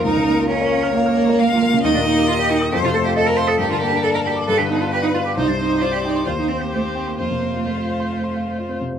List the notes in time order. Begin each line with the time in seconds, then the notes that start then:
Already playing: A#4
0.03 C#2 D#4 A#4
0.17 C#3
0.27 A#3
0.39 F4
0.49 C#4 C#5 F5
0.61 A#4
0.72 F5
0.83 F6
0.95 A#3 F5
1.06 F6
1.17 F5
1.29 A#4
1.39 F5
1.52 F4
1.63 A#3
1.74 C#3
1.83 D#2 D#4 A#4 D#5
1.94 A#2 D4
2.05 A#3 D#4
2.18 G4
2.27 F4 D#5
2.39 G4 A#4
2.50 D#4 G5
2.61 D#6
2.71 F2 G4 A4 C5
2.83 C3 F4
2.94 A3 A4
3.05 F4 G4
3.16 A4 D#5
3.26 A4 A#4
3.36 C5 F5
3.47 A4 D#6
3.58 G2 G4 A#4
3.69 D3 F4
3.81 A#3 G4
3.92 D4
4.03 A4 D5
4.14 A#4
4.25 G4 D5
4.36 D6
4.48 G2 A4 B4
4.58 D3 G4
4.69 B3 D#4
4.81 F4
4.90 G4 B4 D5
5.03 D#4 B4
5.14 F4 F5
5.25 G4 D6
5.36 C2 D#4 C5
5.48 G2 D4
5.59 C4 D#4
5.71 G4
5.81 F4 C5 D5
5.92 G4
6.04 D#4 G5
6.16 C6
6.25 D#2 F4 C5
6.38 D#3 D#4
6.49 C4
6.62 A#3 G4
6.70 A3 G4 C5
6.85 C4 G4
6.95 C4 G5
7.07 A#3 C6
7.18 F2 A#3 F4 C5
7.31 C3
7.42 C4
7.53 F4
7.65 A3 C5
7.77 F4
7.89 F5
8.00 C6
8.13 F5
8.24 C6
8.36 F5
8.46 C5
8.58 F4
8.69 C4
8.81 C3
8.93 C4